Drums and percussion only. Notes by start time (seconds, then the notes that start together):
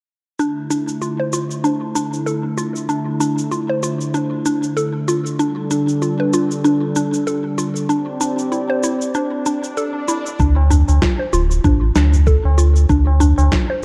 0.39 cabasa
0.71 cabasa
0.88 cabasa
1.02 cabasa
1.33 cabasa
1.51 cabasa
1.64 cabasa
1.96 cabasa
2.13 cabasa
2.27 cabasa
2.58 cabasa
2.76 cabasa
2.89 cabasa
3.21 cabasa
3.38 cabasa
3.52 cabasa
3.83 cabasa
4.01 cabasa
4.14 cabasa
4.46 cabasa
4.63 cabasa
4.77 cabasa
5.08 cabasa
5.26 cabasa
5.40 cabasa
5.71 cabasa
5.89 cabasa
6.02 cabasa
6.33 cabasa
6.51 cabasa
6.65 cabasa
6.96 cabasa
7.14 cabasa
7.27 cabasa
7.58 cabasa
7.76 cabasa
7.90 cabasa
8.21 cabasa
8.39 cabasa
8.52 cabasa
8.83 cabasa
9.01 cabasa
9.15 cabasa
9.46 cabasa
9.64 cabasa
9.77 cabasa
10.08 cabasa
10.26 cabasa
10.40 kick, cabasa
10.56 tabla na
10.71 tabla ge, cabasa
10.88 tabla na, cabasa
11.02 kick, snare, cabasa
11.33 cabasa
11.51 cabasa
11.64 kick, tabla ge, cabasa
11.96 snare, tabla tin, cabasa
12.14 tabla ge, cabasa
12.27 kick, cabasa
12.45 tabla na
12.58 cabasa
12.76 cabasa
12.89 kick, cabasa
13.07 tabla na
13.21 tabla ge, cabasa
13.38 tabla na, cabasa
13.52 kick, snare, cabasa